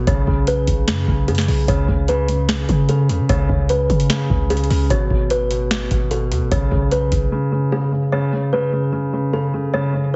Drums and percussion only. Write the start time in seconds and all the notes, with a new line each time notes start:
0.07 kick, closed hi-hat
0.27 kick
0.47 closed hi-hat
0.67 kick, closed hi-hat
0.88 snare, closed hi-hat
1.08 kick
1.28 closed hi-hat
1.35 snare, closed hi-hat
1.42 closed hi-hat
1.48 open hi-hat
1.68 kick, closed hi-hat
1.88 kick
2.08 closed hi-hat
2.28 closed hi-hat
2.49 snare, closed hi-hat
2.69 kick, closed hi-hat
2.89 closed hi-hat
3.09 closed hi-hat
3.29 kick, closed hi-hat
3.49 kick
3.69 closed hi-hat
3.90 kick, closed hi-hat
4.00 closed hi-hat
4.10 snare, closed hi-hat
4.30 kick
4.50 closed hi-hat
4.57 closed hi-hat
4.64 closed hi-hat
4.71 open hi-hat
4.90 kick, closed hi-hat
5.11 kick
5.30 closed hi-hat
5.51 closed hi-hat
5.71 snare, closed hi-hat
5.91 kick, closed hi-hat
6.11 closed hi-hat
6.32 closed hi-hat
6.52 kick, closed hi-hat
6.72 kick
6.91 closed hi-hat
7.12 kick, closed hi-hat